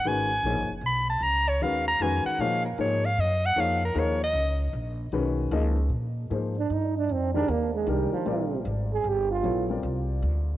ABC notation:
X:1
M:3/4
L:1/8
Q:"Swing" 1/4=153
K:Bbphr
V:1 name="Soprano saxophone"
a3 z c' =a | b d f b a g | f B d f e g | f B d e2 z |
z6 | [K:Bbmix] z6 | z6 | z6 |
z6 |]
V:2 name="Grand piano"
[E,A,DGc] z [F,B,EAd] z3 | z2 [E,A,DGc] z [E,A,DGc]2 | [F,B,EAd] z [F,B,EAd] z3 | [F,B,EAd] z [F,B,EAB] z3 |
z2 [E,A,DGc]2 [F,B,EAe] z | [K:Bbmix] z2 [F,B,EAc] z3 | z [E,A,DGB] z2 [E,A,DGB]2 | [G,CFBd]4- [G,CFBd] z |
[_G,_C=E=A_d] [=G,=CFB=d]4 z |]
V:3 name="Trombone"
z6 | z6 | z6 | z6 |
z6 | [K:Bbmix] z3 D E D | C D B, A, G, F,- | F,2 z A G F- |
F z4 z |]
V:4 name="Upright bass" clef=bass
A,,,2 (3B,,, A,,, G,,, C,,2 | D,,2 E,,2 F,, z | B,,2 A,,2 G,,2 | F,,2 E,,2 D,,2 |
B,,,2 C,,2 D,,2 | [K:Bbmix] B,,2 A,,2 G,,2 | F,,2 E,,2 C,, z | B,,,2 A,,,2 G,,,2 |
B,,,2 C,,2 D,,2 |]